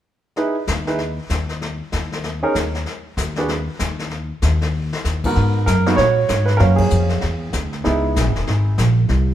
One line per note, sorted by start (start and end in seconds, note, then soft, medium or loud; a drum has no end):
0.36 0.54 D#4 medium
0.36 0.54 E4 soft
0.36 0.54 G#4 soft
0.36 0.55 B4 medium
0.36 brush sweep soft
0.36 snare soft
0.67 1.17 D#2 medium
0.67 snare soft
0.67 hi-hat pedal soft
0.87 0.98 D#4 medium
0.87 0.98 E4 soft
0.87 0.98 G#4 soft
0.87 0.98 B4 medium
0.87 snare soft
0.98 brush sweep soft
0.98 snare soft
1.30 1.79 D#2 medium
1.30 snare soft
1.30 hi-hat pedal soft
1.49 snare soft
1.61 brush sweep soft
1.61 snare soft
1.92 2.42 D#2 medium
1.92 snare medium
1.92 hi-hat pedal soft
2.12 snare soft
2.23 brush sweep soft
2.23 snare soft
2.43 2.54 C#4 medium
2.43 2.54 D#4 medium
2.43 2.54 G#4 medium
2.43 2.54 A#4 medium
2.55 2.84 D#2 medium
2.55 snare soft
2.55 hi-hat pedal medium
2.74 snare soft
2.86 brush sweep soft
2.86 snare soft
3.17 3.67 D#2 medium
3.17 snare soft
3.17 hi-hat pedal medium
3.36 3.48 D4 medium
3.36 3.48 F#4 medium
3.36 3.48 G#4 soft
3.36 3.48 B4 medium
3.36 snare soft
3.48 brush sweep soft
3.48 snare soft
3.79 4.29 D#2 medium
3.79 snare medium
3.79 hi-hat pedal medium
3.99 snare soft
4.10 brush sweep soft
4.10 snare soft
4.42 4.92 D#2 medium
4.42 snare medium
4.42 hi-hat pedal soft
4.61 snare soft
4.93 snare medium
5.05 5.34 D#2 medium
5.05 snare medium
5.05 hi-hat pedal soft
5.24 5.65 G#2 soft
5.24 5.65 B3 soft
5.24 5.66 D#4 soft
5.24 5.66 F#4 medium
5.24 5.65 A#4 medium
5.24 kick medium
5.24 crash medium
5.36 5.66 G#2 medium
5.36 brush sweep soft
5.36 snare soft
5.66 5.97 F#2 medium
5.66 5.96 A#4 medium
5.66 snare medium
5.66 hi-hat pedal medium
5.86 5.97 A#3 medium
5.86 5.97 B3 medium
5.86 5.97 D#4 medium
5.86 5.97 F#4 medium
5.86 snare soft
5.96 6.28 A#2 medium
5.96 6.49 C#5 medium
5.96 brush sweep soft
5.96 snare soft
6.01 6.58 F#4 medium
6.29 6.60 G#2 medium
6.29 snare medium
6.29 hi-hat pedal medium
6.46 6.59 B4 medium
6.46 snare soft
6.57 6.91 F#2 medium
6.57 7.23 A#3 soft
6.57 6.79 C#4 medium
6.57 7.23 F#4 medium
6.57 6.62 A#4 medium
6.57 7.23 F5 medium
6.57 brush sweep soft
6.57 snare soft
6.76 7.67 G#4 medium
6.76 kick medium
6.76 ride medium
6.80 7.20 C#4 soft
6.90 7.22 F2 medium
6.90 hi-hat pedal medium
7.09 snare soft
7.21 7.53 E2 medium
7.21 brush sweep soft
7.21 snare soft
7.53 7.84 D2 medium
7.53 snare medium
7.53 hi-hat pedal medium
7.73 snare soft
7.84 8.16 C#2 medium
7.84 8.71 G#3 medium
7.84 8.71 B3 medium
7.84 8.71 D#4 medium
7.84 8.71 E4 medium
7.84 brush sweep soft
7.84 snare soft
8.16 8.27 B1 medium
8.16 snare medium
8.16 hi-hat pedal soft
8.27 8.36 G#1 medium
8.36 8.46 E1 medium
8.36 snare soft
8.47 8.78 G#1 medium
8.47 brush sweep soft
8.47 snare soft
8.78 9.09 A#1 medium
8.78 snare medium
8.78 hi-hat pedal medium
9.09 9.34 C2 medium
9.09 brush sweep soft
9.09 snare soft